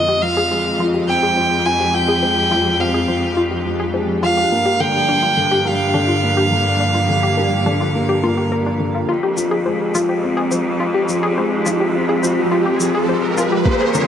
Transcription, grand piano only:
0.22 0.39 F3 medium
0.50 0.78 G#3 medium
0.79 1.07 F3 medium
1.08 1.36 C4 medium
1.37 1.54 F3 medium
1.94 2.11 F3 medium
2.23 2.50 G#3 medium
2.51 2.79 F3 medium
2.80 3.07 C4 medium
3.08 3.25 F3 medium
3.66 3.82 F3 medium
3.94 4.21 G#3 medium
4.23 4.50 F3 medium
4.52 4.79 A#3 medium
4.80 4.97 D3 medium
5.37 5.54 D3 medium
5.66 5.93 G3 medium
5.94 6.22 D3 medium
6.23 6.50 A#3 medium
6.52 6.68 D3 medium
7.09 7.25 D3 medium
7.38 7.65 G3 medium
7.66 7.93 D3 medium
7.95 8.22 A#3 medium
8.24 8.51 A#3 medium
8.80 9.07 D3 medium
9.37 9.53 F3 medium
9.66 9.93 G#3 medium
9.95 10.22 F3 medium
10.23 10.50 C4 medium
10.52 10.68 F3 medium
11.09 11.25 F3 medium
11.37 11.64 G#3 medium
11.66 11.93 F3 medium
11.94 12.22 C4 medium
12.23 12.40 F3 medium
12.80 12.96 F3 medium
13.08 13.36 G#3 medium
13.37 13.65 F3 medium
13.66 13.93 A#3 medium
13.95 14.07 D3 medium

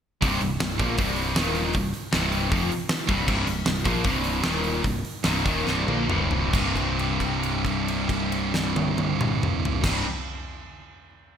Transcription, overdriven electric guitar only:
0.21 0.39 C2 loud
0.21 0.40 G2 loud
0.21 0.40 C3 loud
0.40 0.56 C2 medium
0.40 0.56 G2 medium
0.59 0.75 C2 medium
0.59 0.75 G2 medium
0.80 0.97 A#2 medium
0.80 0.98 F3 medium
0.80 0.98 A#3 loud
0.98 1.35 C2 medium
0.98 1.36 G2 loud
0.98 1.36 C3 loud
1.35 1.73 D#2 medium
1.35 1.74 A#2 medium
1.35 1.74 D#3 loud
1.74 1.89 C2 medium
1.74 1.89 G2 medium
2.11 2.50 C2 medium
2.11 2.50 G2 loud
2.11 2.49 C3 loud
2.50 2.69 F2 medium
2.50 2.69 C3 loud
2.50 2.70 F3 loud
3.08 3.26 C2 medium
3.08 3.27 G2 medium
3.08 3.27 C3 medium
3.27 3.45 C2 loud
3.27 3.46 G2 loud
3.27 3.46 C3 medium
3.46 3.62 C2 medium
3.46 3.62 G2 medium
3.67 3.82 C2 medium
3.67 3.82 G2 medium
3.84 4.03 A#2 medium
3.84 4.03 F3 medium
3.84 4.04 A#3 loud
4.03 4.42 C2 medium
4.03 4.42 G2 medium
4.03 4.43 C3 loud
4.43 4.82 D#2 medium
4.43 4.82 A#2 medium
4.43 4.83 D#3 medium
4.83 4.99 C2 medium
4.83 4.99 G2 medium
5.25 5.44 C2 medium
5.25 5.44 G2 loud
5.25 5.44 C3 loud
5.46 5.65 D#2 medium
5.46 5.65 A#2 medium
5.46 5.66 D#3 loud
5.66 5.86 C2 medium
5.66 5.86 G2 medium
5.66 5.87 C3 medium
5.88 6.08 A#2 medium
5.88 6.08 F3 medium
5.88 6.08 A#3 loud
6.09 6.52 C2 medium
6.09 6.52 G2 medium
6.09 6.53 C3 medium
6.53 9.81 C2 medium
6.53 9.83 G2 loud
6.53 9.86 C3 loud
9.81 10.03 C2 medium
9.81 10.04 G2 medium
9.86 10.05 C3 medium

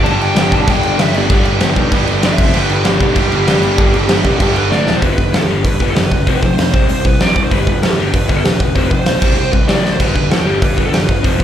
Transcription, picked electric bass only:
0.05 0.19 G1 medium
0.20 0.35 G1 medium
0.36 0.51 G1 medium
0.51 0.66 B1 medium
0.67 0.81 G1 medium
0.82 0.97 G1 medium
0.98 1.13 G1 medium
1.14 1.29 G1 medium
1.30 1.44 G1 loud
1.45 1.60 G1 medium
1.60 1.75 G1 medium
1.76 1.91 B1 medium
1.92 2.06 G1 medium
2.08 2.22 G1 medium
2.23 2.38 G1 medium
2.38 2.54 F1 medium
2.54 2.69 G1 loud
2.69 2.84 G1 medium
2.85 3.00 G1 medium
3.00 3.15 B1 medium
3.16 3.31 G1 medium
3.32 3.47 G1 medium
3.48 3.62 G1 loud
3.63 3.78 G1 medium
3.78 3.93 G1 medium
3.94 4.09 G1 medium
4.09 4.24 G1 medium
4.24 4.39 B1 medium
4.40 4.55 G1 medium
4.56 4.70 G1 medium
4.71 4.85 D2 medium
4.86 5.01 E1 medium
5.02 5.16 G1 medium
5.18 5.31 G1 medium
5.32 5.47 E2 medium
5.48 5.63 G1 medium
5.64 5.79 G2 medium
5.80 5.94 G1 medium
5.95 6.24 F#1 loud
6.27 6.41 F1 medium
6.43 6.57 F1 medium
6.57 6.72 F1 medium
6.74 6.88 C2 medium
6.89 7.03 C2 medium
7.05 7.19 C2 medium
7.20 7.34 C2 medium
7.36 7.50 C2 medium
7.51 7.65 G1 medium
7.67 7.81 G1 medium
7.82 7.96 E2 medium
7.98 8.12 G1 medium
8.14 8.28 G2 medium
8.29 8.43 G1 medium
8.44 8.72 E1 medium
8.75 8.89 F1 medium
8.91 9.05 F1 medium
9.06 9.20 B1 medium
9.22 9.35 C2 medium
9.36 9.51 C2 medium
9.53 9.67 C2 medium
9.69 9.83 C2 medium
9.83 9.98 A1 medium
10.00 10.14 G1 medium
10.15 10.29 G1 medium
10.30 10.44 E2 medium
10.46 10.60 G1 medium
10.62 10.76 G2 medium
10.78 10.91 G1 medium
10.91 11.21 G1 medium
11.24 11.38 F1 loud
11.40 11.44 F1 medium

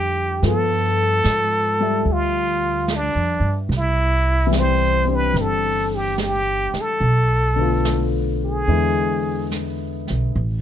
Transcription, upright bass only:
0.00 0.38 F2 medium
0.42 1.21 G2 medium
1.25 2.03 G#2 medium
2.05 3.11 D2 medium
3.15 3.40 F2 soft
3.40 3.67 G2 medium
3.69 5.30 C2 medium
5.34 6.70 G1 medium
6.74 muted upright bass stroke soft
7.01 8.63 B1 medium
8.68 10.04 E2 medium
10.10 10.34 B1 medium
10.35 10.62 A1 medium

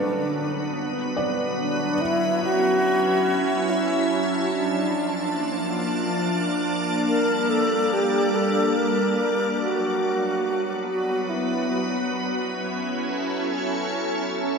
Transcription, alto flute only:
0.00 1.17 D4 medium
1.60 2.03 D4 medium
2.01 2.43 E4 loud
2.45 3.71 F#4 loud
3.70 4.55 E4 medium
4.54 5.38 D4 medium
7.07 7.51 A#4 loud
7.50 7.95 A4 loud
7.93 8.37 G4 loud
8.36 8.78 A4 loud
8.77 9.61 A#4 medium
9.62 10.84 F#4 loud
10.91 11.31 F#4 medium
11.29 11.93 E4 medium

